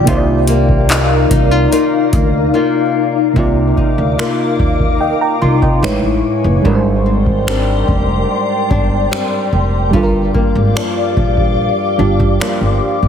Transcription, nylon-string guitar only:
0.00 0.48 G3 medium
0.00 0.89 D4 medium
0.07 3.35 C3 medium
0.07 1.30 F4 medium
0.48 1.71 A#3 medium
0.89 1.31 D#4 medium
1.31 1.51 D#4 medium
1.51 1.72 F4 medium
1.72 2.53 A#3 medium
1.72 2.54 D#4 medium
1.72 2.55 F4 medium
2.54 4.18 A#3 medium
2.54 3.77 D#4 medium
2.54 3.80 F4 medium
3.36 5.82 C3 medium
3.77 4.19 D#4 medium
4.19 5.91 A#3 medium
4.19 7.06 D#4 medium
4.19 5.40 F4 medium
5.42 5.91 F4 medium
5.83 6.64 A2 medium
6.65 9.93 G#2 medium
7.06 7.46 C4 medium
7.47 9.11 G3 medium
7.47 9.11 C4 medium
7.47 8.70 D4 medium
8.71 9.12 D4 medium
9.11 10.75 G3 medium
9.11 10.02 C4 medium
9.11 10.76 D4 medium
9.93 13.08 G2 medium
10.34 10.75 A#3 medium
10.76 12.40 F3 medium
10.76 12.40 A#3 medium
10.76 11.98 D4 medium
11.99 12.40 D4 medium
12.40 13.08 F3 medium
12.40 13.08 A#3 medium
12.40 13.08 D4 medium

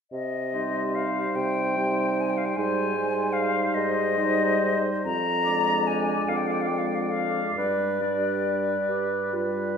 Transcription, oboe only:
0.54 1.75 C5 soft
1.77 2.56 C5 soft
2.58 2.97 C5 soft
2.98 4.16 C5 soft
4.18 5.04 C5 soft
5.45 6.68 D5 soft
6.71 7.56 D5 soft
7.58 8.01 B4 soft
8.03 9.32 B4 soft
9.35 9.78 B4 soft

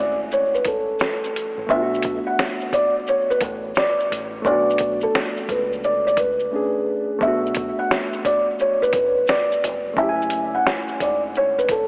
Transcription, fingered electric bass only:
0.00 0.97 G#1 medium
1.58 1.68 A1 medium
1.70 2.19 B1 loud
3.30 muted fingered electric bass stroke soft
3.42 3.72 A1 medium
4.12 4.41 A1 medium
4.45 5.05 B1 loud
5.49 6.49 C#2 medium
7.22 7.70 B1 loud
8.82 muted fingered electric bass stroke soft
8.94 9.24 A1 medium
9.64 9.97 E1 medium
9.97 10.57 F#1 loud
11.01 11.88 G#1 medium

